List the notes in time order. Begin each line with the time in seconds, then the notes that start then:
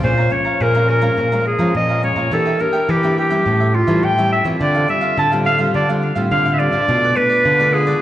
Already playing: F3 G#3 C#4
0.03 A#2 G#4 C5 C#5 F5 A#5
0.18 C#5 F5 A#5
0.30 F3 G#3 C#4 C#5, muted cavaquinho stroke
0.45 C#5 F5 A#5
0.60 F2 A#2 G#4 A#4 C#5 F5 A#5
0.74 F3 G#3 C#4 C#5 F5 A#5
0.88 G#4 A#4 C#5 F5 A#5
1.01 F3 G#3 C#4 C#5 F5 A#5
1.17 A#2 G#4 C#5 F5 A#5
1.32 F3 G#3 C#4 C#5 F5 A#5
1.45 G#4, muted cavaquinho stroke
1.59 F3 G#3 C#4 C#5 F5 A#5
1.75 F2 A#2 D#5
1.89 C#5 F5 A#5
2.03 F3 G#3 C#4 C#5
2.16 A#2 C#5 F5 A#5
2.31 E3 A#3 D4 G4 A4 A#4 E5 G5
2.45 A#4 E5 G5
2.59 A#3 D4 G4 A#4, muted cavaquinho stroke
2.73 A#4 E5 G5
2.88 E3 D4 G4 A#4 E5 G5
3.03 A#3 D4 G4 A#4 E5 G5
3.16 D4 G4 A#4 E5 G5
3.30 G3 C#4 E4 A#4 E5 G5
3.45 A2 G4 A4 C#5 E5
3.60 A4 C#5 E5
3.74 F4, muted cavaquinho stroke
3.87 E3 G3 C#4 E4 A4 C#5 E5
4.03 A2 E3 G5
4.18 G3 C#4 E4 A4 C#5 E5
4.32 E5
4.44 E3 G3 C4 F4 A4 C#5 E5
4.60 D3 D4 A4 C5 D5 F5
4.75 A4 C5 F5
4.88 G3 C4 F4 E5, muted cavaquinho stroke
5.01 A4 C5 F5
5.17 A2 D3 D4 A4 C5 F5 A5
5.32 G3 C4 F4 A4 C5 F5
5.45 D4 A4 C5 F5
5.58 G3 C4 F4 A4 C5 F5
5.74 D3 D4 A4 C5 D5 F5
5.89 G3 C4 F4 A4 C5 F5
6.02 muted cavaquinho stroke
6.15 A2 G3 C4 F4 A4 C5 F5
6.31 A2 D3 F5
6.46 A4 C5 F5
6.53 E5
6.59 G3 C4 F4 D5
6.72 D3 A4 C5 F5
6.88 B2 A3 D4 F4 A4 B4 D5
7.03 A4 B4 D5
7.16 A3 D4 F4 B4, muted cavaquinho stroke
7.29 A4 B4 D5
7.45 B2 D3 F4 A4 B4 D5
7.59 A3 D4 F4 A4 B4 D5
7.73 F4 G#4 A4 B4 D5
7.87 G#3 D4 F4 A4 B4 D5